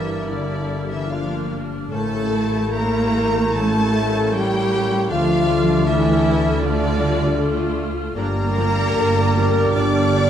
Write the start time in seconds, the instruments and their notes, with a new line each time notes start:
Already playing: double bass section G1, harp G2 F4 G4 D5, cello section E3, french horn section E3, viola section G3 E4, bassoon A#3, clarinet D4, violin section E4 E5, trumpet section E4, oboe D5, flute section F6
0.01 harp D4
0.27 french horn section D3, cello section D3, harp D3, trumpet section D4, violin section D4 D5
0.56 harp D4
0.83 harp G4
0.88 french horn section E3, cello section E3, violin section E4 E5, trumpet section E4
1.08 french horn section F3, cello section F3, viola section A#3 D4, violin section F4 F5, trumpet section F4, harp D5
1.37 harp G4
1.51 viola section D4
1.64 harp D4
1.90 double bass section A1, harp A2, french horn section A3, cello section A3, viola section A3 C#4, bassoon A#3, clarinet E4, violin section A4 A5, trumpet section A4, oboe C#5, flute section G6
2.19 harp C#4
2.34 viola section E4
2.46 harp G4
2.70 french horn section A#3, cello section A#3, violin section A#4 A#5, trumpet section A#4, harp C#5
3.00 harp G4
3.53 harp E3, french horn section A3, cello section A3, viola section C#4, trumpet section A4, violin section A4 A5
3.81 harp C#4
4.07 harp G4
4.31 cello section G3, french horn section G3, trumpet section G4, violin section G4 G5, harp C#5
4.84 harp C#4
5.09 double bass section D2, harp D3, cello section F3, french horn section F3, bassoon A3, viola section A3 D4, clarinet D4, trumpet section F4, violin section F4 F5, oboe D5, flute section F6
5.36 harp D4
5.49 viola section G3
5.61 harp A4
5.85 cello section E3, french horn section E3, viola section A3 D4, trumpet section E4, violin section E4 E5, harp D5
6.11 harp A4
6.23 viola section E4
6.36 harp D4
6.60 cello section D3, french horn section D3, harp A3, viola section A3 F4, trumpet section D4, violin section D4 D5
6.87 harp D4
7.00 viola section G3
7.14 harp A4
7.40 viola section A3 F4, harp D5
7.66 harp A4
7.92 harp D4
8.15 double bass section G1, harp G2, viola section F3 D4, bassoon G3, french horn section A#3, cello section A#3, clarinet D4, violin section A#4 A#5, trumpet section A#4, oboe D5, flute section F6
8.43 harp D4
8.57 viola section F3 D4
8.69 harp A#4
8.96 double bass section G1, viola section F3 D4, harp D5
9.36 viola section F3 D4
9.48 harp D4
9.73 double bass section G1, harp D3, viola section F3 D4, cello section D4, french horn section D4, trumpet section D5, violin section D5 D6
10.15 viola section F3 D4